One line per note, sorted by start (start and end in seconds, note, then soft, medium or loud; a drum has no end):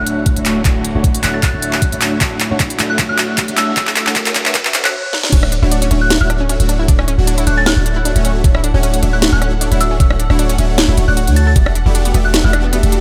0.00 0.34 D1 medium
0.00 4.90 D3 medium
0.00 0.34 A3 medium
0.00 0.42 A3 medium
0.00 0.34 D4 medium
0.00 0.43 D4 medium
0.00 0.43 E4 medium
0.00 4.90 E4 medium
0.00 0.34 F#4 medium
0.00 0.44 F#4 medium
0.00 4.90 F#4 medium
0.00 0.34 C#5 medium
0.00 0.44 C#5 medium
0.00 4.90 C#5 medium
0.00 0.34 E5 loud
0.00 0.11 F#6 medium
0.00 riser medium
0.07 closed hi-hat medium
0.26 kick medium
0.26 closed hi-hat medium
0.36 0.63 D1 medium
0.36 0.63 A3 loud
0.36 0.63 D4 medium
0.36 0.63 F#4 medium
0.36 0.63 C#5 medium
0.36 0.63 E5 loud
0.36 closed hi-hat medium
0.45 0.62 A3 loud
0.45 0.63 D4 medium
0.45 0.63 E4 medium
0.45 0.63 F#4 medium
0.45 0.63 C#5 loud
0.45 clap medium
0.45 closed hi-hat medium
0.63 0.93 D1 loud
0.63 1.20 A3 medium
0.63 1.21 D4 medium
0.63 1.21 E4 medium
0.63 1.22 F#4 medium
0.63 kick loud
0.63 clap medium
0.63 closed hi-hat medium
0.67 1.22 C#5 loud
0.85 closed hi-hat medium
0.95 1.22 D1 loud
0.95 1.21 A3 medium
0.95 1.21 D4 medium
0.95 1.21 F#4 medium
0.95 1.21 C#5 medium
0.95 1.21 F#5 loud
1.04 kick loud
1.04 closed hi-hat medium
1.14 closed hi-hat medium
1.22 1.51 D1 medium
1.22 1.36 A3 medium
1.22 1.51 A3 medium
1.22 1.36 D4 medium
1.22 1.51 D4 medium
1.22 1.36 E4 medium
1.22 1.51 F#4 medium
1.22 1.36 F#4 medium
1.22 1.51 C#5 medium
1.22 1.37 C#5 loud
1.22 1.51 E5 loud
1.22 1.32 F#6 medium
1.22 clap medium
1.22 closed hi-hat medium
1.34 1.41 A6 medium
1.43 1.98 F#6 medium
1.43 kick medium
1.43 clap medium
1.43 closed hi-hat medium
1.53 1.90 D1 loud
1.53 1.90 A3 loud
1.53 1.90 D4 medium
1.53 1.90 F#4 medium
1.53 1.90 C#5 medium
1.53 1.90 E5 loud
1.62 closed hi-hat medium
1.73 clap medium
1.82 kick medium
1.82 closed hi-hat medium
1.92 2.19 D1 loud
1.92 2.19 A3 medium
1.92 2.19 D4 medium
1.92 2.19 F#4 medium
1.92 2.19 C#5 medium
1.92 2.19 E5 loud
1.92 closed hi-hat medium
2.01 clap medium
2.01 closed hi-hat medium
2.19 2.49 D1 loud
2.19 2.76 A3 medium
2.19 2.37 A3 loud
2.19 2.77 D4 medium
2.19 2.37 D4 medium
2.19 2.77 E4 medium
2.19 2.37 F#4 medium
2.19 2.78 F#4 medium
2.19 2.37 C#5 medium
2.19 kick medium
2.19 clap medium
2.19 closed hi-hat medium
2.23 2.78 C#5 medium
2.40 clap medium
2.40 closed hi-hat medium
2.51 2.77 D1 loud
2.51 2.77 A3 medium
2.51 2.77 D4 medium
2.51 2.77 F#4 medium
2.51 2.77 C#5 medium
2.51 2.77 F#5 loud
2.60 kick loud
2.60 clap medium
2.60 closed hi-hat medium
2.70 closed hi-hat medium
2.77 3.07 D1 loud
2.77 3.54 A3 medium
2.77 3.07 A3 medium
2.77 3.55 D4 medium
2.77 3.07 D4 medium
2.77 3.55 E4 medium
2.77 3.07 F#4 medium
2.77 3.56 F#4 medium
2.77 3.07 C#5 medium
2.77 3.56 C#5 medium
2.77 3.07 E5 loud
2.77 clap medium
2.77 closed hi-hat medium
2.90 3.03 F#6 medium
2.99 kick loud
2.99 clap medium
2.99 closed hi-hat medium
3.09 3.46 D1 medium
3.09 3.46 A3 medium
3.09 3.46 D4 medium
3.09 3.46 F#4 medium
3.09 3.46 C#5 medium
3.09 3.46 E5 loud
3.09 3.23 F#6 medium
3.18 clap medium
3.18 closed hi-hat medium
3.38 kick loud
3.38 clap medium
3.38 closed hi-hat medium
3.48 3.75 D1 loud
3.48 3.75 A3 loud
3.48 3.74 D4 medium
3.48 3.74 F#4 medium
3.48 3.74 C#5 medium
3.48 3.75 E5 loud
3.48 closed hi-hat medium
3.56 3.73 A3 loud
3.56 3.74 D4 medium
3.56 3.75 E4 medium
3.56 3.75 F#4 medium
3.56 3.75 C#5 loud
3.56 3.71 E6 medium
3.56 clap medium
3.56 closed hi-hat medium
3.75 4.05 D1 loud
3.75 4.32 A3 medium
3.75 4.32 D4 medium
3.75 4.33 E4 medium
3.75 4.33 F#4 medium
3.75 3.91 E6 medium
3.75 kick loud
3.75 clap medium
3.75 closed hi-hat medium
3.79 4.34 C#5 loud
3.87 clap medium
3.96 clap medium
3.96 closed hi-hat medium
4.07 4.33 D1 loud
4.07 4.33 A3 medium
4.07 4.33 D4 medium
4.07 4.33 F#4 medium
4.07 4.33 C#5 medium
4.07 4.33 F#5 loud
4.07 clap medium
4.16 kick loud
4.16 clap medium
4.16 closed hi-hat medium
4.26 clap medium
4.26 closed hi-hat medium
4.34 4.63 D1 loud
4.34 4.47 A3 loud
4.34 4.63 A3 medium
4.34 4.48 D4 medium
4.34 4.63 D4 medium
4.34 4.48 E4 medium
4.34 4.63 F#4 medium
4.34 4.48 F#4 medium
4.34 4.63 C#5 medium
4.34 4.48 C#5 loud
4.34 4.63 E5 loud
4.34 clap loud
4.34 closed hi-hat medium
4.46 clap medium
4.55 kick loud
4.55 clap loud
4.55 closed hi-hat medium
4.65 4.94 D1 loud
4.65 4.94 A3 loud
4.65 4.94 D4 medium
4.65 4.94 F#4 medium
4.65 4.94 C#5 medium
4.65 4.94 E5 loud
4.65 clap medium
4.74 clap loud
4.74 closed hi-hat medium
4.85 4.94 F#6 medium
4.85 clap medium
5.13 snare medium
5.23 snare medium
5.33 5.60 D1 loud
5.33 11.52 D3 medium
5.33 5.49 A3 loud
5.33 5.36 C#4 loud
5.33 5.48 D4 medium
5.33 11.52 E4 medium
5.33 5.48 F#4 medium
5.33 5.48 C#5 medium
5.33 11.52 C#5 medium
5.33 5.49 E5 loud
5.33 13.01 F#5 medium
5.33 kick loud
5.33 closed hi-hat medium
5.33 crash loud
5.43 cross-stick medium
5.52 5.58 D4 medium
5.52 closed hi-hat medium
5.62 5.89 D1 loud
5.62 5.89 A3 medium
5.62 5.89 D4 medium
5.62 5.71 E4 loud
5.62 5.89 F#4 medium
5.62 5.89 C#5 medium
5.62 5.89 F#5 loud
5.71 5.81 D4 loud
5.71 closed hi-hat medium
5.82 5.87 C#4 loud
5.82 closed hi-hat medium
5.91 6.19 D1 loud
5.91 6.18 A3 medium
5.91 5.95 C#4 loud
5.91 6.18 D4 medium
5.91 6.18 F#4 medium
5.91 6.18 C#5 medium
5.91 6.18 E5 loud
5.91 closed hi-hat medium
6.01 6.15 F#6 medium
6.10 6.17 D4 medium
6.10 snare loud
6.10 closed hi-hat medium
6.21 6.58 D1 loud
6.21 6.57 A3 medium
6.21 6.57 D4 medium
6.21 6.29 E4 loud
6.21 6.57 F#4 medium
6.21 6.57 C#5 medium
6.21 6.57 E5 loud
6.21 6.34 F#6 medium
6.30 6.40 D4 loud
6.30 cross-stick medium
6.30 closed hi-hat medium
6.40 6.46 C#4 loud
6.49 6.53 C#4 loud
6.49 closed hi-hat medium
6.60 6.87 D1 loud
6.60 6.86 A3 medium
6.60 6.86 D4 medium
6.60 6.86 F#4 medium
6.60 6.86 C#5 medium
6.60 6.86 E5 medium
6.60 closed hi-hat medium
6.69 6.75 D4 medium
6.69 closed hi-hat medium
6.79 6.88 E4 loud
6.88 7.16 D1 medium
6.88 7.04 A3 medium
6.88 6.98 D4 loud
6.88 7.04 D4 medium
6.88 7.04 F#4 medium
6.88 7.04 C#5 medium
6.88 7.04 E5 loud
6.88 kick loud
6.88 closed hi-hat medium
6.99 7.04 C#4 loud
6.99 cross-stick medium
7.08 7.12 C#4 loud
7.08 closed hi-hat medium
7.18 7.45 D1 loud
7.18 7.45 A3 medium
7.18 7.45 D4 medium
7.18 7.45 F#4 medium
7.18 7.45 C#5 medium
7.18 7.45 F#5 loud
7.27 7.34 D4 medium
7.27 closed hi-hat medium
7.38 7.46 E4 loud
7.38 closed hi-hat medium
7.47 7.75 D1 loud
7.47 7.74 A3 medium
7.47 7.56 D4 loud
7.47 7.74 D4 medium
7.47 7.74 F#4 medium
7.47 7.74 C#5 medium
7.47 7.74 E5 loud
7.47 7.55 F#6 medium
7.47 closed hi-hat medium
7.57 7.63 C#4 loud
7.57 7.65 A6 medium
7.66 7.70 C#4 loud
7.66 8.21 F#6 medium
7.66 snare loud
7.66 closed hi-hat medium
7.77 8.14 D1 medium
7.77 8.13 A3 loud
7.77 8.13 D4 medium
7.77 8.13 F#4 medium
7.77 8.13 C#5 medium
7.77 8.13 E5 loud
7.86 7.92 D4 medium
7.86 closed hi-hat medium
7.96 8.05 E4 loud
8.05 8.15 D4 loud
8.05 closed hi-hat medium
8.16 8.42 D1 loud
8.16 8.42 A3 medium
8.16 8.21 C#4 loud
8.16 8.42 D4 medium
8.16 8.42 F#4 medium
8.16 8.42 C#5 medium
8.16 8.42 E5 medium
8.16 closed hi-hat medium
8.25 8.29 C#4 loud
8.25 closed hi-hat medium
8.44 8.72 D1 loud
8.44 8.60 A3 medium
8.44 8.60 D4 medium
8.44 8.51 D4 medium
8.44 8.60 F#4 medium
8.44 8.60 C#5 medium
8.44 8.60 E5 loud
8.44 kick loud
8.44 closed hi-hat medium
8.55 8.63 E4 loud
8.55 cross-stick medium
8.64 8.73 D4 loud
8.64 closed hi-hat medium
8.74 9.01 D1 loud
8.74 9.01 A3 loud
8.74 8.80 C#4 loud
8.74 9.01 D4 medium
8.74 9.01 F#4 medium
8.74 9.01 C#5 medium
8.74 9.01 F#5 loud
8.83 8.87 C#4 loud
8.83 closed hi-hat medium
8.94 closed hi-hat medium
9.03 9.31 D1 loud
9.03 9.30 A3 medium
9.03 9.09 D4 medium
9.03 9.30 D4 medium
9.03 9.30 F#4 medium
9.03 9.30 C#5 medium
9.03 9.30 E5 loud
9.03 closed hi-hat medium
9.13 9.21 E4 loud
9.13 9.26 F#6 medium
9.22 9.32 D4 loud
9.22 snare loud
9.22 closed hi-hat medium
9.33 9.69 D1 medium
9.33 9.69 A3 medium
9.33 9.38 C#4 loud
9.33 9.69 D4 medium
9.33 9.69 F#4 medium
9.33 9.69 C#5 medium
9.33 9.69 E5 loud
9.33 9.46 F#6 medium
9.42 9.45 C#4 loud
9.42 cross-stick medium
9.42 closed hi-hat medium
9.61 9.67 D4 medium
9.61 closed hi-hat medium
9.72 9.98 D1 medium
9.72 9.98 A3 medium
9.72 9.98 D4 medium
9.72 9.80 E4 loud
9.72 9.98 F#4 medium
9.72 9.98 C#5 medium
9.72 9.98 E5 medium
9.72 closed hi-hat medium
9.81 9.90 D4 loud
9.81 9.95 E6 medium
9.81 closed hi-hat medium
9.91 9.97 C#4 loud
10.00 10.28 D1 loud
10.00 10.16 A3 loud
10.00 10.04 C#4 loud
10.00 10.16 D4 medium
10.00 10.16 F#4 medium
10.00 10.16 C#5 medium
10.00 10.16 E5 loud
10.00 10.14 E6 medium
10.00 kick loud
10.00 closed hi-hat medium
10.10 cross-stick medium
10.20 10.26 D4 medium
10.20 closed hi-hat medium
10.30 10.57 D1 loud
10.30 10.56 A3 loud
10.30 10.56 D4 medium
10.30 10.38 E4 loud
10.30 10.56 F#4 medium
10.30 10.56 C#5 medium
10.30 10.56 F#5 loud
10.30 cross-stick medium
10.39 10.49 D4 loud
10.39 closed hi-hat medium
10.49 10.55 C#4 loud
10.49 closed hi-hat medium
10.58 10.86 D1 loud
10.58 10.86 A3 medium
10.58 10.62 C#4 loud
10.58 10.86 D4 medium
10.58 10.86 F#4 medium
10.58 10.86 C#5 medium
10.58 10.86 E5 loud
10.58 closed hi-hat medium
10.78 10.84 D4 medium
10.78 snare loud
10.78 closed hi-hat medium
10.88 10.96 D1 loud
10.88 10.96 A3 medium
10.88 10.96 D4 medium
10.88 10.97 E4 loud
10.88 10.96 F#4 medium
10.88 10.96 C#5 medium
10.88 10.96 E5 loud
10.97 11.06 D1 loud
10.97 11.05 A3 loud
10.97 11.05 D4 medium
10.97 11.05 F#4 medium
10.97 11.05 C#5 medium
10.97 11.01 C#5 medium
10.97 11.05 E5 loud
10.97 closed hi-hat medium
11.08 11.29 D1 loud
11.08 11.25 A3 medium
11.08 11.25 D4 medium
11.08 11.25 F#4 medium
11.08 11.25 C#5 medium
11.08 11.13 D5 medium
11.08 11.25 F#5 loud
11.08 11.21 F#6 medium
11.17 11.21 F#4 medium
11.17 closed hi-hat medium
11.27 11.54 D2 loud
11.27 11.54 A3 medium
11.27 11.54 D4 medium
11.27 11.54 F#4 medium
11.27 11.54 C#5 medium
11.27 11.54 F#5 loud
11.27 closed hi-hat medium
11.36 11.46 A4 medium
11.36 11.43 A6 medium
11.36 closed hi-hat medium
11.47 11.50 A4 medium
11.47 11.53 A6 medium
11.56 11.84 E1 loud
11.56 13.01 E3 medium
11.56 13.01 G3 medium
11.56 11.72 A3 medium
11.56 11.60 B3 loud
11.56 13.01 D4 medium
11.56 11.72 F#4 medium
11.56 11.72 G4 medium
11.56 13.01 A4 medium
11.56 11.72 D5 medium
11.56 11.72 E5 loud
11.56 kick loud
11.56 closed hi-hat medium
11.66 cross-stick medium
11.75 11.82 D4 medium
11.75 closed hi-hat medium
11.86 12.13 E1 loud
11.86 12.12 A3 medium
11.86 11.94 E4 loud
11.86 12.12 F#4 medium
11.86 12.12 G4 medium
11.86 12.12 D5 medium
11.86 12.12 F#5 loud
11.95 12.04 D4 loud
11.95 closed hi-hat medium
12.05 12.11 B3 loud
12.05 closed hi-hat medium
12.14 12.42 E1 loud
12.14 12.42 A3 medium
12.14 12.18 B3 loud
12.14 12.42 F#4 medium
12.14 12.42 G4 medium
12.14 12.42 D5 medium
12.14 12.42 E5 loud
12.14 closed hi-hat medium
12.25 12.38 F#6 medium
12.34 12.40 D4 medium
12.34 snare loud
12.34 closed hi-hat medium
12.44 12.81 E1 loud
12.44 12.81 A3 loud
12.44 12.53 E4 loud
12.44 12.81 F#4 medium
12.44 12.81 G4 medium
12.44 12.81 D5 medium
12.44 12.81 E5 loud
12.44 12.58 F#6 medium
12.53 12.63 D4 loud
12.53 cross-stick medium
12.53 closed hi-hat medium
12.64 12.69 B3 loud
12.73 12.77 B3 loud
12.73 closed hi-hat medium
12.83 13.01 E1 loud
12.83 13.01 A3 medium
12.83 13.01 F#4 medium
12.83 13.01 G4 medium
12.83 13.01 D5 medium
12.83 13.01 E5 medium
12.83 closed hi-hat medium
12.92 12.99 D4 medium
12.92 closed hi-hat medium